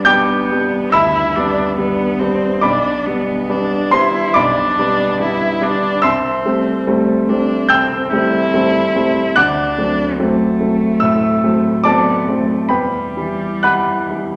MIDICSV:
0, 0, Header, 1, 3, 480
1, 0, Start_track
1, 0, Key_signature, 1, "major"
1, 0, Tempo, 862069
1, 1465, Time_signature, 4, 2, 24, 8
1, 2429, Tempo, 834492
1, 7229, Tempo, 914634
1, 8096, End_track
2, 0, Start_track
2, 0, Title_t, "Cello"
2, 0, Program_c, 0, 42
2, 27, Note_on_c, 0, 59, 71
2, 514, Note_on_c, 0, 64, 86
2, 522, Note_off_c, 0, 59, 0
2, 758, Note_on_c, 0, 62, 74
2, 766, Note_off_c, 0, 64, 0
2, 984, Note_off_c, 0, 62, 0
2, 987, Note_on_c, 0, 59, 80
2, 1222, Note_on_c, 0, 60, 76
2, 1230, Note_off_c, 0, 59, 0
2, 1462, Note_on_c, 0, 62, 76
2, 1470, Note_off_c, 0, 60, 0
2, 1703, Note_on_c, 0, 59, 66
2, 1712, Note_off_c, 0, 62, 0
2, 1954, Note_on_c, 0, 62, 67
2, 1962, Note_off_c, 0, 59, 0
2, 2199, Note_on_c, 0, 64, 79
2, 2207, Note_off_c, 0, 62, 0
2, 2438, Note_on_c, 0, 62, 84
2, 2447, Note_off_c, 0, 64, 0
2, 2913, Note_off_c, 0, 62, 0
2, 2916, Note_on_c, 0, 64, 79
2, 3156, Note_on_c, 0, 62, 78
2, 3165, Note_off_c, 0, 64, 0
2, 3389, Note_on_c, 0, 60, 75
2, 3398, Note_off_c, 0, 62, 0
2, 3869, Note_on_c, 0, 57, 65
2, 3878, Note_off_c, 0, 60, 0
2, 4111, Note_on_c, 0, 62, 69
2, 4120, Note_off_c, 0, 57, 0
2, 4349, Note_on_c, 0, 60, 68
2, 4357, Note_off_c, 0, 62, 0
2, 4587, Note_off_c, 0, 60, 0
2, 4591, Note_on_c, 0, 64, 94
2, 5310, Note_on_c, 0, 62, 84
2, 5318, Note_off_c, 0, 64, 0
2, 5788, Note_on_c, 0, 57, 78
2, 5797, Note_off_c, 0, 62, 0
2, 6740, Note_off_c, 0, 57, 0
2, 6743, Note_on_c, 0, 59, 66
2, 6985, Note_on_c, 0, 57, 60
2, 6994, Note_off_c, 0, 59, 0
2, 7226, Note_on_c, 0, 55, 68
2, 7234, Note_off_c, 0, 57, 0
2, 8096, Note_off_c, 0, 55, 0
2, 8096, End_track
3, 0, Start_track
3, 0, Title_t, "Grand piano"
3, 0, Program_c, 1, 0
3, 0, Control_c, 1, 64, 127
3, 0, Note_on_c, 1, 43, 59
3, 0, Note_on_c, 1, 55, 49
3, 0, Note_on_c, 1, 59, 47
3, 0, Note_on_c, 1, 62, 46
3, 0, Note_on_c, 1, 74, 67
3, 0, Note_on_c, 1, 83, 64
3, 0, Note_on_c, 1, 86, 100
3, 27, Note_on_c, 1, 91, 102
3, 33, Note_off_c, 1, 86, 0
3, 33, Note_on_c, 1, 86, 84
3, 36, Note_off_c, 1, 55, 0
3, 36, Note_on_c, 1, 55, 56
3, 36, Note_on_c, 1, 79, 81
3, 39, Note_off_c, 1, 59, 0
3, 39, Note_on_c, 1, 59, 52
3, 41, Note_off_c, 1, 62, 0
3, 41, Note_on_c, 1, 62, 55
3, 262, Note_off_c, 1, 55, 0
3, 263, Note_off_c, 1, 59, 0
3, 264, Note_off_c, 1, 62, 0
3, 285, Note_on_c, 1, 55, 47
3, 287, Note_on_c, 1, 59, 46
3, 292, Note_on_c, 1, 62, 52
3, 499, Note_off_c, 1, 86, 0
3, 500, Note_off_c, 1, 55, 0
3, 501, Note_off_c, 1, 59, 0
3, 501, Note_off_c, 1, 79, 0
3, 503, Note_off_c, 1, 62, 0
3, 514, Note_on_c, 1, 88, 102
3, 518, Note_off_c, 1, 91, 0
3, 521, Note_off_c, 1, 83, 0
3, 521, Note_on_c, 1, 38, 51
3, 521, Note_on_c, 1, 76, 80
3, 521, Note_on_c, 1, 83, 86
3, 749, Note_off_c, 1, 38, 0
3, 758, Note_on_c, 1, 55, 52
3, 762, Note_on_c, 1, 59, 56
3, 764, Note_on_c, 1, 62, 57
3, 968, Note_off_c, 1, 55, 0
3, 970, Note_off_c, 1, 59, 0
3, 971, Note_off_c, 1, 62, 0
3, 990, Note_on_c, 1, 59, 55
3, 991, Note_on_c, 1, 55, 50
3, 993, Note_on_c, 1, 62, 53
3, 1203, Note_off_c, 1, 59, 0
3, 1204, Note_off_c, 1, 55, 0
3, 1205, Note_off_c, 1, 62, 0
3, 1227, Note_on_c, 1, 55, 51
3, 1229, Note_on_c, 1, 59, 54
3, 1231, Note_on_c, 1, 62, 54
3, 1443, Note_off_c, 1, 76, 0
3, 1443, Note_off_c, 1, 83, 0
3, 1444, Note_off_c, 1, 55, 0
3, 1445, Note_off_c, 1, 59, 0
3, 1446, Note_off_c, 1, 62, 0
3, 1455, Note_on_c, 1, 86, 82
3, 1461, Note_off_c, 1, 74, 0
3, 1461, Note_on_c, 1, 74, 67
3, 1462, Note_off_c, 1, 88, 0
3, 1463, Note_on_c, 1, 83, 64
3, 1464, Note_on_c, 1, 35, 62
3, 1476, Control_c, 1, 64, 0
3, 1481, Note_off_c, 1, 43, 0
3, 1570, Control_c, 1, 64, 127
3, 1698, Note_off_c, 1, 35, 0
3, 1708, Note_on_c, 1, 55, 43
3, 1712, Note_on_c, 1, 59, 47
3, 1712, Note_on_c, 1, 62, 51
3, 1925, Note_off_c, 1, 55, 0
3, 1927, Note_off_c, 1, 59, 0
3, 1928, Note_off_c, 1, 62, 0
3, 1942, Note_on_c, 1, 55, 51
3, 1944, Note_on_c, 1, 59, 54
3, 1946, Note_on_c, 1, 62, 57
3, 2163, Note_off_c, 1, 55, 0
3, 2164, Note_off_c, 1, 74, 0
3, 2165, Note_off_c, 1, 59, 0
3, 2165, Note_off_c, 1, 83, 0
3, 2166, Note_off_c, 1, 62, 0
3, 2179, Note_on_c, 1, 84, 97
3, 2184, Note_off_c, 1, 86, 0
3, 2185, Note_on_c, 1, 72, 62
3, 2188, Note_on_c, 1, 55, 56
3, 2188, Note_on_c, 1, 59, 47
3, 2193, Note_on_c, 1, 62, 56
3, 2406, Note_off_c, 1, 55, 0
3, 2406, Note_off_c, 1, 59, 0
3, 2408, Note_off_c, 1, 62, 0
3, 2410, Note_off_c, 1, 72, 0
3, 2416, Note_on_c, 1, 86, 105
3, 2424, Note_off_c, 1, 84, 0
3, 2424, Note_on_c, 1, 74, 73
3, 2424, Note_on_c, 1, 83, 79
3, 2428, Note_on_c, 1, 35, 62
3, 2665, Note_off_c, 1, 35, 0
3, 2674, Note_on_c, 1, 55, 59
3, 2676, Note_on_c, 1, 59, 57
3, 2678, Note_on_c, 1, 62, 61
3, 2890, Note_off_c, 1, 55, 0
3, 2891, Note_off_c, 1, 59, 0
3, 2892, Note_off_c, 1, 62, 0
3, 2907, Note_on_c, 1, 55, 52
3, 2909, Note_on_c, 1, 59, 56
3, 2910, Note_on_c, 1, 62, 58
3, 3125, Note_off_c, 1, 55, 0
3, 3126, Note_off_c, 1, 59, 0
3, 3127, Note_off_c, 1, 62, 0
3, 3145, Note_on_c, 1, 55, 48
3, 3148, Note_on_c, 1, 62, 57
3, 3149, Note_on_c, 1, 59, 52
3, 3365, Note_off_c, 1, 55, 0
3, 3365, Note_off_c, 1, 83, 0
3, 3366, Note_off_c, 1, 74, 0
3, 3367, Note_off_c, 1, 59, 0
3, 3367, Note_off_c, 1, 62, 0
3, 3381, Note_on_c, 1, 88, 92
3, 3384, Note_off_c, 1, 86, 0
3, 3389, Note_on_c, 1, 84, 78
3, 3390, Note_on_c, 1, 76, 78
3, 3392, Note_on_c, 1, 36, 64
3, 3401, Control_c, 1, 64, 0
3, 3498, Control_c, 1, 64, 127
3, 3625, Note_off_c, 1, 36, 0
3, 3631, Note_on_c, 1, 55, 44
3, 3633, Note_on_c, 1, 57, 47
3, 3635, Note_on_c, 1, 60, 50
3, 3847, Note_off_c, 1, 55, 0
3, 3848, Note_off_c, 1, 57, 0
3, 3849, Note_off_c, 1, 60, 0
3, 3872, Note_on_c, 1, 55, 57
3, 3873, Note_on_c, 1, 57, 52
3, 3877, Note_on_c, 1, 60, 62
3, 4087, Note_off_c, 1, 55, 0
3, 4087, Note_off_c, 1, 57, 0
3, 4089, Note_off_c, 1, 60, 0
3, 4111, Note_on_c, 1, 55, 51
3, 4112, Note_on_c, 1, 57, 51
3, 4114, Note_on_c, 1, 60, 48
3, 4325, Note_off_c, 1, 76, 0
3, 4325, Note_off_c, 1, 84, 0
3, 4327, Note_off_c, 1, 55, 0
3, 4327, Note_off_c, 1, 57, 0
3, 4328, Note_off_c, 1, 60, 0
3, 4339, Note_off_c, 1, 88, 0
3, 4340, Note_on_c, 1, 91, 94
3, 4346, Note_on_c, 1, 79, 82
3, 4347, Note_on_c, 1, 88, 89
3, 4350, Note_on_c, 1, 36, 53
3, 4583, Note_off_c, 1, 36, 0
3, 4593, Note_on_c, 1, 55, 61
3, 4594, Note_on_c, 1, 57, 52
3, 4597, Note_on_c, 1, 60, 61
3, 4808, Note_off_c, 1, 55, 0
3, 4808, Note_off_c, 1, 57, 0
3, 4810, Note_off_c, 1, 60, 0
3, 4831, Note_on_c, 1, 55, 57
3, 4831, Note_on_c, 1, 57, 60
3, 4837, Note_on_c, 1, 60, 61
3, 5046, Note_off_c, 1, 55, 0
3, 5046, Note_off_c, 1, 57, 0
3, 5049, Note_off_c, 1, 60, 0
3, 5070, Note_on_c, 1, 55, 53
3, 5073, Note_on_c, 1, 57, 51
3, 5073, Note_on_c, 1, 60, 52
3, 5284, Note_off_c, 1, 79, 0
3, 5284, Note_off_c, 1, 88, 0
3, 5286, Note_off_c, 1, 55, 0
3, 5287, Note_off_c, 1, 57, 0
3, 5288, Note_off_c, 1, 60, 0
3, 5302, Note_on_c, 1, 90, 107
3, 5304, Note_off_c, 1, 91, 0
3, 5306, Note_on_c, 1, 86, 69
3, 5308, Note_on_c, 1, 78, 69
3, 5311, Note_on_c, 1, 38, 58
3, 5318, Control_c, 1, 64, 0
3, 5409, Control_c, 1, 64, 127
3, 5541, Note_off_c, 1, 38, 0
3, 5547, Note_on_c, 1, 54, 46
3, 5547, Note_on_c, 1, 57, 45
3, 5550, Note_on_c, 1, 60, 44
3, 5760, Note_off_c, 1, 54, 0
3, 5760, Note_off_c, 1, 57, 0
3, 5762, Note_off_c, 1, 60, 0
3, 5783, Note_on_c, 1, 54, 51
3, 5785, Note_on_c, 1, 57, 53
3, 5785, Note_on_c, 1, 60, 55
3, 5997, Note_off_c, 1, 54, 0
3, 5998, Note_off_c, 1, 57, 0
3, 5998, Note_off_c, 1, 60, 0
3, 6016, Note_on_c, 1, 54, 46
3, 6020, Note_on_c, 1, 57, 48
3, 6025, Note_on_c, 1, 60, 44
3, 6235, Note_off_c, 1, 54, 0
3, 6236, Note_off_c, 1, 57, 0
3, 6236, Note_off_c, 1, 86, 0
3, 6237, Note_off_c, 1, 78, 0
3, 6239, Note_off_c, 1, 60, 0
3, 6247, Note_on_c, 1, 88, 90
3, 6253, Note_on_c, 1, 76, 68
3, 6256, Note_off_c, 1, 90, 0
3, 6257, Note_on_c, 1, 45, 53
3, 6491, Note_off_c, 1, 45, 0
3, 6497, Note_on_c, 1, 54, 49
3, 6499, Note_on_c, 1, 57, 47
3, 6500, Note_on_c, 1, 60, 52
3, 6713, Note_off_c, 1, 76, 0
3, 6716, Note_off_c, 1, 54, 0
3, 6717, Note_off_c, 1, 57, 0
3, 6717, Note_off_c, 1, 60, 0
3, 6728, Note_on_c, 1, 86, 94
3, 6734, Note_off_c, 1, 88, 0
3, 6735, Note_on_c, 1, 81, 73
3, 6736, Note_on_c, 1, 74, 76
3, 6737, Note_on_c, 1, 54, 50
3, 6740, Note_on_c, 1, 57, 44
3, 6742, Note_on_c, 1, 60, 51
3, 6958, Note_off_c, 1, 54, 0
3, 6959, Note_off_c, 1, 57, 0
3, 6960, Note_off_c, 1, 60, 0
3, 6983, Note_on_c, 1, 54, 41
3, 6984, Note_on_c, 1, 57, 45
3, 6988, Note_on_c, 1, 60, 46
3, 7203, Note_off_c, 1, 74, 0
3, 7203, Note_off_c, 1, 81, 0
3, 7206, Note_off_c, 1, 54, 0
3, 7206, Note_off_c, 1, 57, 0
3, 7208, Note_off_c, 1, 60, 0
3, 7217, Note_on_c, 1, 83, 77
3, 7222, Note_off_c, 1, 86, 0
3, 7223, Note_on_c, 1, 79, 59
3, 7226, Note_on_c, 1, 40, 54
3, 7227, Note_on_c, 1, 71, 58
3, 7236, Control_c, 1, 64, 0
3, 7318, Control_c, 1, 64, 127
3, 7462, Note_off_c, 1, 40, 0
3, 7470, Note_on_c, 1, 52, 39
3, 7472, Note_on_c, 1, 55, 36
3, 7475, Note_on_c, 1, 64, 46
3, 7697, Note_off_c, 1, 79, 0
3, 7699, Note_off_c, 1, 52, 0
3, 7699, Note_off_c, 1, 71, 0
3, 7701, Note_off_c, 1, 55, 0
3, 7702, Note_off_c, 1, 64, 0
3, 7711, Note_off_c, 1, 83, 0
3, 7712, Note_on_c, 1, 90, 86
3, 7718, Note_on_c, 1, 78, 70
3, 7719, Note_on_c, 1, 83, 71
3, 7720, Note_on_c, 1, 52, 44
3, 7722, Note_on_c, 1, 55, 41
3, 7724, Note_on_c, 1, 64, 45
3, 7935, Note_off_c, 1, 52, 0
3, 7936, Note_off_c, 1, 55, 0
3, 7937, Note_off_c, 1, 64, 0
3, 7959, Note_on_c, 1, 52, 39
3, 7961, Note_on_c, 1, 55, 38
3, 7962, Note_on_c, 1, 64, 40
3, 8096, Note_off_c, 1, 52, 0
3, 8096, Note_off_c, 1, 55, 0
3, 8096, Note_off_c, 1, 64, 0
3, 8096, Note_off_c, 1, 78, 0
3, 8096, Note_off_c, 1, 83, 0
3, 8096, Note_off_c, 1, 90, 0
3, 8096, End_track
0, 0, End_of_file